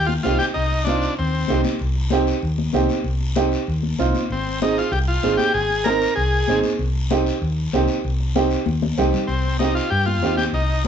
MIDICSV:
0, 0, Header, 1, 5, 480
1, 0, Start_track
1, 0, Key_signature, -3, "minor"
1, 0, Tempo, 312175
1, 853, Time_signature, 4, 2, 24, 8
1, 16721, End_track
2, 0, Start_track
2, 0, Title_t, "Transistor combo organ"
2, 0, Program_c, 0, 18
2, 96, Note_on_c, 0, 65, 82
2, 212, Note_off_c, 0, 65, 0
2, 352, Note_on_c, 0, 65, 83
2, 585, Note_off_c, 0, 65, 0
2, 592, Note_on_c, 0, 67, 91
2, 705, Note_off_c, 0, 67, 0
2, 829, Note_on_c, 0, 63, 87
2, 1286, Note_off_c, 0, 63, 0
2, 1298, Note_on_c, 0, 62, 81
2, 1760, Note_off_c, 0, 62, 0
2, 1821, Note_on_c, 0, 60, 67
2, 2486, Note_off_c, 0, 60, 0
2, 6639, Note_on_c, 0, 60, 75
2, 7071, Note_off_c, 0, 60, 0
2, 7111, Note_on_c, 0, 63, 73
2, 7346, Note_off_c, 0, 63, 0
2, 7354, Note_on_c, 0, 65, 78
2, 7564, Note_on_c, 0, 67, 78
2, 7565, Note_off_c, 0, 65, 0
2, 7673, Note_off_c, 0, 67, 0
2, 7806, Note_on_c, 0, 65, 83
2, 8253, Note_off_c, 0, 65, 0
2, 8263, Note_on_c, 0, 67, 86
2, 8497, Note_off_c, 0, 67, 0
2, 8517, Note_on_c, 0, 68, 93
2, 8983, Note_on_c, 0, 70, 87
2, 9016, Note_off_c, 0, 68, 0
2, 9441, Note_off_c, 0, 70, 0
2, 9461, Note_on_c, 0, 68, 81
2, 10142, Note_off_c, 0, 68, 0
2, 14259, Note_on_c, 0, 60, 76
2, 14719, Note_off_c, 0, 60, 0
2, 14748, Note_on_c, 0, 63, 70
2, 14981, Note_off_c, 0, 63, 0
2, 14989, Note_on_c, 0, 65, 80
2, 15221, Note_off_c, 0, 65, 0
2, 15227, Note_on_c, 0, 67, 81
2, 15461, Note_off_c, 0, 67, 0
2, 15469, Note_on_c, 0, 65, 81
2, 15926, Note_off_c, 0, 65, 0
2, 15949, Note_on_c, 0, 67, 80
2, 16062, Note_off_c, 0, 67, 0
2, 16207, Note_on_c, 0, 63, 77
2, 16657, Note_off_c, 0, 63, 0
2, 16721, End_track
3, 0, Start_track
3, 0, Title_t, "Upright piano"
3, 0, Program_c, 1, 0
3, 376, Note_on_c, 1, 60, 63
3, 379, Note_on_c, 1, 63, 60
3, 391, Note_on_c, 1, 67, 75
3, 711, Note_off_c, 1, 60, 0
3, 712, Note_off_c, 1, 63, 0
3, 718, Note_off_c, 1, 67, 0
3, 1341, Note_on_c, 1, 60, 61
3, 1353, Note_on_c, 1, 63, 57
3, 1357, Note_on_c, 1, 65, 70
3, 1672, Note_off_c, 1, 60, 0
3, 1679, Note_off_c, 1, 63, 0
3, 1680, Note_off_c, 1, 65, 0
3, 2292, Note_on_c, 1, 60, 67
3, 2301, Note_on_c, 1, 63, 62
3, 2307, Note_on_c, 1, 67, 75
3, 2628, Note_off_c, 1, 60, 0
3, 2632, Note_off_c, 1, 63, 0
3, 2635, Note_off_c, 1, 67, 0
3, 3252, Note_on_c, 1, 60, 81
3, 3265, Note_on_c, 1, 63, 70
3, 3267, Note_on_c, 1, 67, 88
3, 3587, Note_off_c, 1, 60, 0
3, 3594, Note_off_c, 1, 63, 0
3, 3595, Note_off_c, 1, 67, 0
3, 4210, Note_on_c, 1, 60, 78
3, 4216, Note_on_c, 1, 63, 72
3, 4221, Note_on_c, 1, 67, 89
3, 4546, Note_off_c, 1, 60, 0
3, 4549, Note_off_c, 1, 63, 0
3, 4551, Note_off_c, 1, 67, 0
3, 5166, Note_on_c, 1, 60, 77
3, 5171, Note_on_c, 1, 63, 71
3, 5179, Note_on_c, 1, 67, 86
3, 5504, Note_off_c, 1, 60, 0
3, 5506, Note_off_c, 1, 63, 0
3, 5510, Note_off_c, 1, 67, 0
3, 6134, Note_on_c, 1, 60, 75
3, 6142, Note_on_c, 1, 65, 85
3, 6143, Note_on_c, 1, 63, 68
3, 6467, Note_off_c, 1, 60, 0
3, 6471, Note_off_c, 1, 65, 0
3, 6472, Note_off_c, 1, 63, 0
3, 7100, Note_on_c, 1, 60, 66
3, 7104, Note_on_c, 1, 63, 59
3, 7110, Note_on_c, 1, 68, 70
3, 7430, Note_off_c, 1, 60, 0
3, 7432, Note_off_c, 1, 63, 0
3, 7435, Note_off_c, 1, 68, 0
3, 8043, Note_on_c, 1, 63, 60
3, 8047, Note_on_c, 1, 60, 66
3, 8051, Note_on_c, 1, 68, 77
3, 8381, Note_off_c, 1, 63, 0
3, 8383, Note_off_c, 1, 60, 0
3, 8385, Note_off_c, 1, 68, 0
3, 9006, Note_on_c, 1, 60, 67
3, 9017, Note_on_c, 1, 63, 61
3, 9024, Note_on_c, 1, 70, 75
3, 9342, Note_off_c, 1, 60, 0
3, 9348, Note_off_c, 1, 63, 0
3, 9352, Note_off_c, 1, 70, 0
3, 9975, Note_on_c, 1, 60, 70
3, 9978, Note_on_c, 1, 63, 66
3, 9983, Note_on_c, 1, 68, 75
3, 10307, Note_off_c, 1, 60, 0
3, 10308, Note_off_c, 1, 63, 0
3, 10311, Note_off_c, 1, 68, 0
3, 10926, Note_on_c, 1, 60, 83
3, 10931, Note_on_c, 1, 63, 74
3, 10942, Note_on_c, 1, 67, 86
3, 11262, Note_off_c, 1, 60, 0
3, 11264, Note_off_c, 1, 63, 0
3, 11270, Note_off_c, 1, 67, 0
3, 11892, Note_on_c, 1, 60, 79
3, 11908, Note_on_c, 1, 63, 72
3, 11908, Note_on_c, 1, 67, 86
3, 12225, Note_off_c, 1, 60, 0
3, 12233, Note_off_c, 1, 63, 0
3, 12233, Note_off_c, 1, 67, 0
3, 12847, Note_on_c, 1, 60, 78
3, 12852, Note_on_c, 1, 63, 69
3, 12854, Note_on_c, 1, 67, 88
3, 13183, Note_off_c, 1, 60, 0
3, 13186, Note_off_c, 1, 63, 0
3, 13186, Note_off_c, 1, 67, 0
3, 13801, Note_on_c, 1, 60, 79
3, 13810, Note_on_c, 1, 63, 73
3, 13815, Note_on_c, 1, 67, 91
3, 14140, Note_off_c, 1, 60, 0
3, 14145, Note_off_c, 1, 63, 0
3, 14147, Note_off_c, 1, 67, 0
3, 14762, Note_on_c, 1, 60, 60
3, 14772, Note_on_c, 1, 63, 59
3, 14778, Note_on_c, 1, 67, 69
3, 15102, Note_off_c, 1, 60, 0
3, 15107, Note_off_c, 1, 63, 0
3, 15110, Note_off_c, 1, 67, 0
3, 15724, Note_on_c, 1, 60, 65
3, 15727, Note_on_c, 1, 63, 57
3, 15739, Note_on_c, 1, 67, 70
3, 16063, Note_off_c, 1, 60, 0
3, 16065, Note_off_c, 1, 63, 0
3, 16071, Note_off_c, 1, 67, 0
3, 16721, End_track
4, 0, Start_track
4, 0, Title_t, "Fingered electric bass"
4, 0, Program_c, 2, 33
4, 0, Note_on_c, 2, 39, 87
4, 278, Note_off_c, 2, 39, 0
4, 381, Note_on_c, 2, 36, 77
4, 570, Note_off_c, 2, 36, 0
4, 857, Note_on_c, 2, 36, 81
4, 1623, Note_off_c, 2, 36, 0
4, 1831, Note_on_c, 2, 39, 86
4, 2207, Note_off_c, 2, 39, 0
4, 2303, Note_on_c, 2, 36, 80
4, 2490, Note_off_c, 2, 36, 0
4, 2783, Note_on_c, 2, 36, 79
4, 3546, Note_off_c, 2, 36, 0
4, 3735, Note_on_c, 2, 39, 85
4, 4117, Note_off_c, 2, 39, 0
4, 4206, Note_on_c, 2, 36, 82
4, 4400, Note_off_c, 2, 36, 0
4, 4678, Note_on_c, 2, 36, 79
4, 5450, Note_off_c, 2, 36, 0
4, 5659, Note_on_c, 2, 39, 84
4, 6039, Note_off_c, 2, 39, 0
4, 6137, Note_on_c, 2, 36, 82
4, 6326, Note_off_c, 2, 36, 0
4, 6611, Note_on_c, 2, 32, 85
4, 7377, Note_off_c, 2, 32, 0
4, 7559, Note_on_c, 2, 36, 87
4, 7947, Note_off_c, 2, 36, 0
4, 8056, Note_on_c, 2, 32, 82
4, 8244, Note_off_c, 2, 32, 0
4, 8524, Note_on_c, 2, 32, 86
4, 9293, Note_off_c, 2, 32, 0
4, 9489, Note_on_c, 2, 36, 86
4, 9872, Note_off_c, 2, 36, 0
4, 9971, Note_on_c, 2, 32, 86
4, 10161, Note_off_c, 2, 32, 0
4, 10440, Note_on_c, 2, 36, 86
4, 11211, Note_off_c, 2, 36, 0
4, 11403, Note_on_c, 2, 39, 87
4, 11788, Note_off_c, 2, 39, 0
4, 11895, Note_on_c, 2, 36, 83
4, 12084, Note_off_c, 2, 36, 0
4, 12372, Note_on_c, 2, 36, 86
4, 13138, Note_off_c, 2, 36, 0
4, 13323, Note_on_c, 2, 39, 84
4, 13709, Note_off_c, 2, 39, 0
4, 13803, Note_on_c, 2, 36, 82
4, 13997, Note_off_c, 2, 36, 0
4, 14270, Note_on_c, 2, 36, 80
4, 15046, Note_off_c, 2, 36, 0
4, 15245, Note_on_c, 2, 43, 77
4, 15713, Note_off_c, 2, 43, 0
4, 15713, Note_on_c, 2, 39, 77
4, 16105, Note_off_c, 2, 39, 0
4, 16186, Note_on_c, 2, 36, 75
4, 16721, Note_off_c, 2, 36, 0
4, 16721, End_track
5, 0, Start_track
5, 0, Title_t, "Drums"
5, 130, Note_on_c, 9, 63, 65
5, 284, Note_off_c, 9, 63, 0
5, 367, Note_on_c, 9, 63, 72
5, 383, Note_on_c, 9, 73, 64
5, 521, Note_off_c, 9, 63, 0
5, 536, Note_off_c, 9, 73, 0
5, 608, Note_on_c, 9, 73, 61
5, 610, Note_on_c, 9, 63, 59
5, 762, Note_off_c, 9, 73, 0
5, 764, Note_off_c, 9, 63, 0
5, 834, Note_on_c, 9, 74, 61
5, 843, Note_on_c, 9, 63, 31
5, 988, Note_off_c, 9, 74, 0
5, 997, Note_off_c, 9, 63, 0
5, 1086, Note_on_c, 9, 63, 31
5, 1239, Note_off_c, 9, 63, 0
5, 1323, Note_on_c, 9, 73, 63
5, 1333, Note_on_c, 9, 63, 86
5, 1477, Note_off_c, 9, 73, 0
5, 1487, Note_off_c, 9, 63, 0
5, 1567, Note_on_c, 9, 73, 60
5, 1721, Note_off_c, 9, 73, 0
5, 1797, Note_on_c, 9, 74, 62
5, 1951, Note_off_c, 9, 74, 0
5, 2274, Note_on_c, 9, 63, 70
5, 2280, Note_on_c, 9, 73, 62
5, 2428, Note_off_c, 9, 63, 0
5, 2433, Note_off_c, 9, 73, 0
5, 2523, Note_on_c, 9, 73, 60
5, 2529, Note_on_c, 9, 63, 64
5, 2677, Note_off_c, 9, 73, 0
5, 2683, Note_off_c, 9, 63, 0
5, 2759, Note_on_c, 9, 74, 62
5, 2766, Note_on_c, 9, 63, 31
5, 2912, Note_off_c, 9, 74, 0
5, 2920, Note_off_c, 9, 63, 0
5, 3006, Note_on_c, 9, 63, 30
5, 3160, Note_off_c, 9, 63, 0
5, 3236, Note_on_c, 9, 63, 86
5, 3249, Note_on_c, 9, 73, 65
5, 3389, Note_off_c, 9, 63, 0
5, 3403, Note_off_c, 9, 73, 0
5, 3495, Note_on_c, 9, 73, 67
5, 3648, Note_off_c, 9, 73, 0
5, 3728, Note_on_c, 9, 74, 69
5, 3882, Note_off_c, 9, 74, 0
5, 3970, Note_on_c, 9, 63, 65
5, 4124, Note_off_c, 9, 63, 0
5, 4197, Note_on_c, 9, 63, 70
5, 4205, Note_on_c, 9, 73, 67
5, 4350, Note_off_c, 9, 63, 0
5, 4359, Note_off_c, 9, 73, 0
5, 4446, Note_on_c, 9, 63, 61
5, 4446, Note_on_c, 9, 73, 61
5, 4599, Note_off_c, 9, 63, 0
5, 4600, Note_off_c, 9, 73, 0
5, 4680, Note_on_c, 9, 63, 32
5, 4682, Note_on_c, 9, 74, 68
5, 4834, Note_off_c, 9, 63, 0
5, 4835, Note_off_c, 9, 74, 0
5, 4927, Note_on_c, 9, 63, 31
5, 5080, Note_off_c, 9, 63, 0
5, 5159, Note_on_c, 9, 73, 67
5, 5167, Note_on_c, 9, 63, 89
5, 5313, Note_off_c, 9, 73, 0
5, 5321, Note_off_c, 9, 63, 0
5, 5410, Note_on_c, 9, 73, 60
5, 5563, Note_off_c, 9, 73, 0
5, 5647, Note_on_c, 9, 74, 65
5, 5800, Note_off_c, 9, 74, 0
5, 5886, Note_on_c, 9, 63, 70
5, 6040, Note_off_c, 9, 63, 0
5, 6127, Note_on_c, 9, 63, 68
5, 6137, Note_on_c, 9, 73, 66
5, 6281, Note_off_c, 9, 63, 0
5, 6291, Note_off_c, 9, 73, 0
5, 6374, Note_on_c, 9, 63, 64
5, 6378, Note_on_c, 9, 73, 61
5, 6528, Note_off_c, 9, 63, 0
5, 6532, Note_off_c, 9, 73, 0
5, 6619, Note_on_c, 9, 63, 30
5, 6622, Note_on_c, 9, 74, 64
5, 6773, Note_off_c, 9, 63, 0
5, 6776, Note_off_c, 9, 74, 0
5, 6860, Note_on_c, 9, 63, 32
5, 7013, Note_off_c, 9, 63, 0
5, 7099, Note_on_c, 9, 73, 64
5, 7102, Note_on_c, 9, 63, 85
5, 7252, Note_off_c, 9, 73, 0
5, 7256, Note_off_c, 9, 63, 0
5, 7351, Note_on_c, 9, 73, 65
5, 7505, Note_off_c, 9, 73, 0
5, 7581, Note_on_c, 9, 74, 68
5, 7734, Note_off_c, 9, 74, 0
5, 8043, Note_on_c, 9, 63, 69
5, 8049, Note_on_c, 9, 73, 66
5, 8197, Note_off_c, 9, 63, 0
5, 8203, Note_off_c, 9, 73, 0
5, 8286, Note_on_c, 9, 63, 66
5, 8288, Note_on_c, 9, 73, 61
5, 8440, Note_off_c, 9, 63, 0
5, 8442, Note_off_c, 9, 73, 0
5, 8520, Note_on_c, 9, 74, 66
5, 8674, Note_off_c, 9, 74, 0
5, 8757, Note_on_c, 9, 63, 32
5, 8911, Note_off_c, 9, 63, 0
5, 9001, Note_on_c, 9, 73, 65
5, 9006, Note_on_c, 9, 63, 85
5, 9155, Note_off_c, 9, 73, 0
5, 9159, Note_off_c, 9, 63, 0
5, 9254, Note_on_c, 9, 73, 67
5, 9408, Note_off_c, 9, 73, 0
5, 9489, Note_on_c, 9, 74, 69
5, 9642, Note_off_c, 9, 74, 0
5, 9957, Note_on_c, 9, 63, 70
5, 9965, Note_on_c, 9, 73, 63
5, 10111, Note_off_c, 9, 63, 0
5, 10119, Note_off_c, 9, 73, 0
5, 10196, Note_on_c, 9, 63, 66
5, 10205, Note_on_c, 9, 73, 64
5, 10350, Note_off_c, 9, 63, 0
5, 10359, Note_off_c, 9, 73, 0
5, 10444, Note_on_c, 9, 74, 64
5, 10451, Note_on_c, 9, 63, 32
5, 10597, Note_off_c, 9, 74, 0
5, 10605, Note_off_c, 9, 63, 0
5, 10691, Note_on_c, 9, 63, 31
5, 10845, Note_off_c, 9, 63, 0
5, 10927, Note_on_c, 9, 63, 86
5, 10930, Note_on_c, 9, 73, 64
5, 11081, Note_off_c, 9, 63, 0
5, 11083, Note_off_c, 9, 73, 0
5, 11170, Note_on_c, 9, 73, 67
5, 11324, Note_off_c, 9, 73, 0
5, 11409, Note_on_c, 9, 74, 63
5, 11563, Note_off_c, 9, 74, 0
5, 11874, Note_on_c, 9, 73, 61
5, 11889, Note_on_c, 9, 63, 71
5, 12028, Note_off_c, 9, 73, 0
5, 12043, Note_off_c, 9, 63, 0
5, 12111, Note_on_c, 9, 73, 64
5, 12265, Note_off_c, 9, 73, 0
5, 12368, Note_on_c, 9, 74, 61
5, 12376, Note_on_c, 9, 63, 31
5, 12522, Note_off_c, 9, 74, 0
5, 12530, Note_off_c, 9, 63, 0
5, 12612, Note_on_c, 9, 63, 32
5, 12766, Note_off_c, 9, 63, 0
5, 12850, Note_on_c, 9, 63, 85
5, 12857, Note_on_c, 9, 73, 66
5, 13003, Note_off_c, 9, 63, 0
5, 13011, Note_off_c, 9, 73, 0
5, 13078, Note_on_c, 9, 73, 63
5, 13232, Note_off_c, 9, 73, 0
5, 13316, Note_on_c, 9, 63, 85
5, 13321, Note_on_c, 9, 74, 66
5, 13470, Note_off_c, 9, 63, 0
5, 13475, Note_off_c, 9, 74, 0
5, 13567, Note_on_c, 9, 63, 95
5, 13720, Note_off_c, 9, 63, 0
5, 13800, Note_on_c, 9, 73, 67
5, 13811, Note_on_c, 9, 64, 72
5, 13954, Note_off_c, 9, 73, 0
5, 13964, Note_off_c, 9, 64, 0
5, 14037, Note_on_c, 9, 73, 63
5, 14054, Note_on_c, 9, 64, 70
5, 14191, Note_off_c, 9, 73, 0
5, 14208, Note_off_c, 9, 64, 0
5, 14287, Note_on_c, 9, 74, 62
5, 14289, Note_on_c, 9, 63, 30
5, 14441, Note_off_c, 9, 74, 0
5, 14443, Note_off_c, 9, 63, 0
5, 14520, Note_on_c, 9, 63, 32
5, 14673, Note_off_c, 9, 63, 0
5, 14761, Note_on_c, 9, 63, 79
5, 14776, Note_on_c, 9, 73, 63
5, 14915, Note_off_c, 9, 63, 0
5, 14929, Note_off_c, 9, 73, 0
5, 15015, Note_on_c, 9, 73, 63
5, 15169, Note_off_c, 9, 73, 0
5, 15256, Note_on_c, 9, 74, 64
5, 15410, Note_off_c, 9, 74, 0
5, 15483, Note_on_c, 9, 63, 65
5, 15637, Note_off_c, 9, 63, 0
5, 15715, Note_on_c, 9, 63, 71
5, 15726, Note_on_c, 9, 73, 62
5, 15868, Note_off_c, 9, 63, 0
5, 15880, Note_off_c, 9, 73, 0
5, 15962, Note_on_c, 9, 63, 61
5, 15971, Note_on_c, 9, 73, 60
5, 16115, Note_off_c, 9, 63, 0
5, 16124, Note_off_c, 9, 73, 0
5, 16201, Note_on_c, 9, 63, 31
5, 16203, Note_on_c, 9, 74, 64
5, 16354, Note_off_c, 9, 63, 0
5, 16357, Note_off_c, 9, 74, 0
5, 16448, Note_on_c, 9, 63, 29
5, 16602, Note_off_c, 9, 63, 0
5, 16721, End_track
0, 0, End_of_file